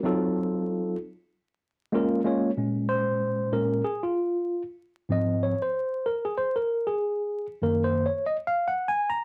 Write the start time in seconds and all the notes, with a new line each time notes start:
0.03 F#3 C4 D#4 F4 A4
1.92 G#3 A#3 C#4 F4 A#4
2.24 G#3 A#3 C#4 F4 C#5
2.57 A#2 G#3 C#4
2.89 C5
3.52 A#2 G#3 C#4 A#4
3.84 G#4
4.03 F4
5.09 G#2 F3 C4 D#5
5.43 C#5
5.62 C5
6.06 A#4
6.25 G#4
6.38 C5
6.56 A#4
6.87 G#4
7.62 F#2 D#3 A#3 A#4
7.84 C5
8.06 C#5
8.26 D#5
8.47 F5
8.68 F#5
8.88 G#5
9.10 A#5